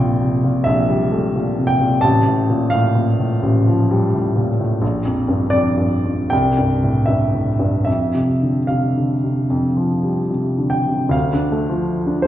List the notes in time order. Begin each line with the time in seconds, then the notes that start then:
Already playing: A#1 C3 G5
0.00 A#2
0.21 C3
0.44 A#2
0.64 A#1 E5
0.89 G3
1.12 A3
1.36 A#2
1.58 C3
1.67 G5
1.81 A#2
2.01 A1 A5
2.28 A2
2.50 A#2
2.70 A2 F5
2.95 A#2
3.19 A2
3.43 A1
3.67 F3
3.91 G3
4.14 A2
4.36 A#2
4.60 A2
4.82 A#1
5.05 F2
5.28 G2
5.50 F2 D5
5.78 G2
6.06 F2
6.30 C2 G5
6.58 G2
6.83 A2
7.06 G2 E5
7.34 A2
7.59 G2
7.85 F2 E5
8.14 C3
8.42 D3
8.67 C3 F5
8.97 D3
9.24 C3
9.50 F2
9.77 F3
10.03 G3
10.31 C3
10.58 D3
10.70 G5
10.87 C3
11.09 D2 F5
11.33 D4
11.52 A3
11.69 F3
12.07 D4
12.22 C5